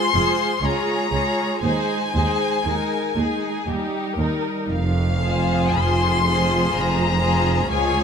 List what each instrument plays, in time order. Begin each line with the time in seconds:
Already playing: viola section G#3 F4, violin section G#4 C5 C6
0.14 double bass section F1, cello section F2, viola section G#3 F4, violin section G#4 C5
0.61 double bass section C#2, cello section C#2, viola section G#3 F4, violin section G#4 C#5 A#5
1.11 double bass section C#2, cello section C#2, viola section G#3 F4, violin section G#4 C#5
1.62 double bass section D#2, cello section D#2, viola section G#3 D#4, violin section G#4 C5 G#5
2.14 cello section D#2, double bass section D#2, viola section G#3 D#4, violin section G#4 C5
2.65 double bass section D#2, cello section D#2, viola section G#3 D#4, violin section A#4
3.15 cello section D#2, double bass section D#2, viola section G#3 D#4, violin section G#4
3.66 cello section D#2, double bass section D#2, viola section G3 D#4, violin section G4
4.17 cello section D#2, double bass section D#2, viola section G3 D#4, violin section A#4
4.68 double bass section F1, cello section F2, violin section F5
5.22 viola section F3 F4, violin section G#4 C5
5.76 double bass section F1, cello section F2, violin section C6
6.26 viola section F3 F4, violin section G#4 C5
6.74 double bass section F1, cello section F2, violin section A#5
7.20 viola section F3 F4, violin section G#4 C5
7.69 cello section C#2, double bass section C#2, viola section F3 F4, violin section G#4 C#5 G#5